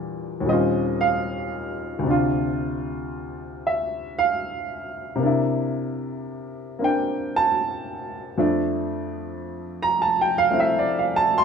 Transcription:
Already playing: E2 A#2 G3 D4
0.40 D#2 A#2
0.46 G3 C4 D#5
0.50 C#4 F4
1.01 F5
1.99 D2 C3
2.07 D4 F4
3.67 E5
4.19 F5
5.15 C3 A#3
5.22 D4 E4
6.79 A#3 C4 D4
6.84 G5
7.36 A5
8.38 F2 F3 A3 D4
9.83 A#5
10.02 A5
10.21 G5
10.38 F5
10.50 A3 C4 E4
10.60 E5
10.79 D5
10.99 F5
11.16 A5
11.38 C6

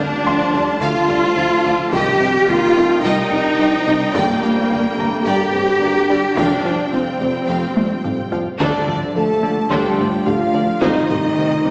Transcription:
Already playing: F3 G3 A3 D4 F4 A#4 F5 G5 A5
0.00 D3 A3
0.26 D2 F3 F5 C6, taiko low
0.54 D2 G3 D4 D5 F5, taiko low
0.81 D2 D3 A3 F4 F5
1.08 D2 G3, taiko low
1.36 D2 F3 D4 F5
1.64 D2 D3 A3 D5 F5
1.92 C2 C3 D#3 G3 C4 G4 D#5 G5, taiko
2.20 C2 C3 G3 D#5 F5, taiko low
2.48 C2 D#3 A#3 F4 D#5 G5, taiko low
2.76 C2 A3 C4 D#5, taiko low
3.04 C2 C3 G3 D#4 D#5 G5
3.32 C2, taiko low
3.59 C2 F3 C4 D#5 G5
3.86 C2 C3 D#3 G3 D#5
4.14 G1 G2 D3 G3 A#3 D4 D5 G5, taiko
4.42 G1 F3 G3 D4 D5 F5, taiko low
4.69 G1 G2 G3 A#3 D5 G5, taiko low
4.98 G1 G2 A3 G4 D5 A#5, taiko low
5.24 G1 G2 G3 A#3 G4 D5 G5
5.53 G2 C4, taiko low
5.81 G1 G2 A#3 G4 D5 G5
6.09 G1 D3 G3 D4 D5
6.37 F1 F2 C3 F3 G3 D4 F4 G4 C5 F5 G5, taiko
6.64 F1 F3 F4 F5, taiko low
6.92 F1 F2 C4 F5 G5, taiko low
7.20 F1 F2 G4 F5, taiko low
7.48 F1 F2 F3 F5 G5
7.77 F2, taiko high
8.04 F1 F2 G4 F5 G5, taiko low-mid
8.32 F1 F3 F4 F5, taiko low
8.59 D2 D3 F3 A3 D4 F4 A4 D5, taiko
8.87 D2 F3 A3 F4 D5, taiko low-mid
9.15 D2 F3 A3 A4 F5 A5
9.43 D2 D3 A3 F4 D5
9.70 D2 D3 G3 A3 D4 G4 A4 G5 C6, taiko
9.98 D2 A3 D4 F4 D5, taiko low-mid
10.25 D2 D3 F3 A3 F4 A4 F5, taiko low-mid
10.54 D2 A3 D4 F4 D5
10.81 C2 C3 D#3 G3 C4 D#4 G4 C5 D#5 G5, taiko
11.09 C2 D#3 G3 G4 D#5, taiko low-mid
11.37 C2 D#3 G3 C5 G5
11.64 C2 C3 G3 G4 D#5

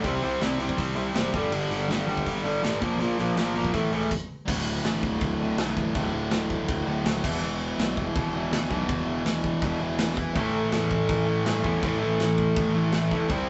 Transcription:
0.03 C2 C3 G3 C4, kick, open hi-hat
0.22 C2 C3 G3 C4, open hi-hat
0.40 C2 C3 G3 C4, snare, open hi-hat
0.59 C2 C3 G3 C4, open hi-hat
0.69 kick
0.78 C2 C3 G3 C4, kick, open hi-hat
0.96 C2 C3 G3 C4, open hi-hat
1.14 F#1 C3 G3 C4, snare, open hi-hat
1.33 G1 G2 D3 G3, kick, open hi-hat
1.51 G1 G2 D3 G3, crash
1.70 G1 G2 D3 G3, open hi-hat
1.88 G1 G2 D3 G3, snare, open hi-hat
2.06 G1 G2 D3 G3, open hi-hat
2.17 kick
2.26 G1 G2 D3 G3, kick, open hi-hat
2.43 G1 G2 D3 G3, open hi-hat
2.62 A1 G2 D3 G3, snare, open hi-hat
2.81 A#1 A#2 F3 A#3, kick, open hi-hat
2.99 A#1 A#2 F3 A#3, open hi-hat
3.17 A#1 A#2 F3 A#3, open hi-hat
3.36 A#1 A#2 F3 A#3, snare, open hi-hat
3.54 G1 A#2 F3 A#3, open hi-hat
3.65 kick
3.73 A1 A2 E3 A3, kick, open hi-hat
3.92 C#2 A2 E3 A3, open hi-hat
4.11 kick, crash
4.48 D1 D2 A2 D3, kick, crash
4.84 A1, snare, crash
5.03 D1, kick
5.21 D1, kick, crash
5.39 D2 A2 D3
5.58 B1 D2 A2 D3, snare, crash
5.77 A1, kick
5.94 D1 D2 A2 D3, kick, crash
6.13 D1
6.31 D1, snare, crash
6.50 kick
6.68 D1, kick, crash
6.85 D1 A2 D3
6.89 D2
7.03 D1 D2 A2, snare, crash
7.08 D3
7.22 E1 E2 B2 E3, kick, crash
7.41 E1, crash
7.78 B1, snare, crash
7.97 E1, kick
8.14 E1 E2 B2 E3, kick, crash
8.33 E2 B2 E3
8.51 D2, snare, crash
8.70 B1 E2 B2, kick
8.74 E3
8.89 E1, kick, crash
9.06 E1
9.25 E1, snare, crash
9.44 kick
9.61 E1 E2 B2 E3, kick, crash
9.80 E1 B2 E3
9.84 E2
9.98 E1, snare, crash
10.17 kick
10.33 A1 A2 E3 A3, kick, crash
10.72 E2, snare, crash
10.91 A1, kick
11.09 A1, kick, crash
11.25 A2 E3 A3
11.44 G2 A2 E3 A3, snare, crash
11.64 E2 A2 E3 A3, kick
11.82 A1 A2 E3 A3, kick, crash
12.02 A1
12.19 A1, snare, crash
12.38 kick
12.56 A1, kick, crash
12.74 A1 A2 E3 A3
12.92 A1 A2 E3 A3, snare, crash
13.11 A2 E3 A3, kick
13.28 C2 C3 G3 C4, kick, crash

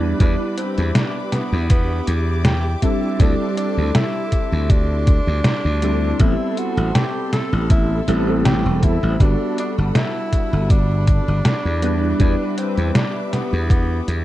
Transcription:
Already playing: E2 G3 B3 D4 E4 G4 B4 E5 B5 D6
0.18 E2 G3 D4 E4 B4, kick, closed hi-hat
0.58 C4, closed hi-hat
0.78 E2, closed hi-hat
0.95 D4, snare, closed hi-hat
1.32 B3, snare, closed hi-hat
1.53 E2
1.70 B3, kick, closed hi-hat
2.07 E2, closed hi-hat
2.45 G4, snare, closed hi-hat
2.82 G3 C4 D4 E4 A4 C6, kick, closed hi-hat
3.19 D2 G3 C4 D4 E4 A4, kick, closed hi-hat
3.57 D4, closed hi-hat
3.78 D2
3.95 E4, snare, closed hi-hat
4.32 kick, closed hi-hat
4.52 D2
4.70 D4, kick, closed hi-hat
5.07 kick, closed hi-hat
5.27 D2
5.44 snare, closed hi-hat
5.65 D2
5.82 G3 C4 D4 E4 A4, closed hi-hat
6.19 A1 G3 B3 C4 E4 A4 A5 B5, kick, closed hi-hat
6.57 F#4, closed hi-hat
6.77 A1, closed hi-hat
6.95 G4, snare, closed hi-hat
7.33 A4, snare, closed hi-hat
7.53 A1
7.70 E4, kick, closed hi-hat
8.08 A1 G3 B3 C4 E4 A4, closed hi-hat
8.26 G3 B3 C4 E4 A4
8.45 G4, snare, closed hi-hat
8.66 E1
8.83 E2 E4, kick, closed hi-hat
9.03 A1
9.19 G1 G3 B3 D4 F#4 A4 F#5 A5, kick, closed hi-hat
9.58 D4, closed hi-hat
9.78 G1
9.95 E4, snare, closed hi-hat
10.33 kick, closed hi-hat
10.53 G1
10.70 D4, kick, closed hi-hat
11.07 kick, closed hi-hat
11.28 G1
11.45 snare, closed hi-hat
11.65 E2
11.82 G3 B3 D4 E4 B4 E5 D6, closed hi-hat
12.19 E2 G3 D4 E4 B4, kick, closed hi-hat
12.58 C4, closed hi-hat
12.77 E2, closed hi-hat
12.95 D4, snare, closed hi-hat
13.33 B3, snare, closed hi-hat
13.53 E2
13.70 B3, kick, closed hi-hat
14.08 E2, closed hi-hat

